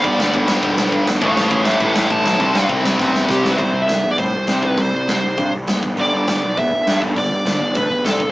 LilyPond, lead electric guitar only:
\new Staff \with { instrumentName = "Lead electric guitar" } { \time 4/4 \key c \lydian \tempo 4 = 201 d''4 r2. | <cis'' f''>8 <cis'' f''>8 <cis'' f''>8 <e'' g''>8 <e'' g''>8 <e'' g''>8 a''4~ | a''4 r2 g'8. b'16 | c''8. e''16 e''8. d''16 c''4. b'8 |
c''4 c''4. r4. | d''2 e''4. r8 | d''2 b'4 a'8. r16 | }